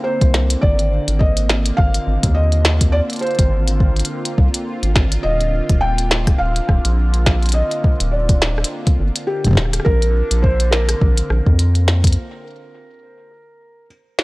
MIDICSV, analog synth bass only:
0, 0, Header, 1, 2, 480
1, 0, Start_track
1, 0, Tempo, 576923
1, 524, Time_signature, 4, 2, 24, 8
1, 11844, End_track
2, 0, Start_track
2, 0, Title_t, "Analog synth bass"
2, 0, Program_c, 0, 38
2, 178, Note_on_c, 0, 36, 78
2, 469, Note_off_c, 0, 36, 0
2, 524, Note_on_c, 0, 32, 102
2, 828, Note_off_c, 0, 32, 0
2, 898, Note_on_c, 0, 32, 80
2, 1428, Note_off_c, 0, 32, 0
2, 1484, Note_on_c, 0, 32, 78
2, 1655, Note_off_c, 0, 32, 0
2, 1724, Note_on_c, 0, 32, 95
2, 1814, Note_off_c, 0, 32, 0
2, 1859, Note_on_c, 0, 39, 88
2, 2508, Note_off_c, 0, 39, 0
2, 2819, Note_on_c, 0, 32, 83
2, 3349, Note_off_c, 0, 32, 0
2, 3644, Note_on_c, 0, 36, 83
2, 3734, Note_off_c, 0, 36, 0
2, 4018, Note_on_c, 0, 32, 78
2, 4308, Note_off_c, 0, 32, 0
2, 4364, Note_on_c, 0, 27, 97
2, 4668, Note_off_c, 0, 27, 0
2, 4739, Note_on_c, 0, 27, 84
2, 5269, Note_off_c, 0, 27, 0
2, 5324, Note_on_c, 0, 27, 80
2, 5495, Note_off_c, 0, 27, 0
2, 5564, Note_on_c, 0, 27, 92
2, 5654, Note_off_c, 0, 27, 0
2, 5698, Note_on_c, 0, 34, 89
2, 6348, Note_off_c, 0, 34, 0
2, 6658, Note_on_c, 0, 27, 82
2, 7189, Note_off_c, 0, 27, 0
2, 7484, Note_on_c, 0, 31, 80
2, 7574, Note_off_c, 0, 31, 0
2, 7859, Note_on_c, 0, 27, 85
2, 8149, Note_off_c, 0, 27, 0
2, 8204, Note_on_c, 0, 34, 101
2, 8508, Note_off_c, 0, 34, 0
2, 8579, Note_on_c, 0, 34, 84
2, 9109, Note_off_c, 0, 34, 0
2, 9164, Note_on_c, 0, 34, 82
2, 9335, Note_off_c, 0, 34, 0
2, 9404, Note_on_c, 0, 34, 92
2, 9494, Note_off_c, 0, 34, 0
2, 9539, Note_on_c, 0, 41, 88
2, 10124, Note_off_c, 0, 41, 0
2, 11844, End_track
0, 0, End_of_file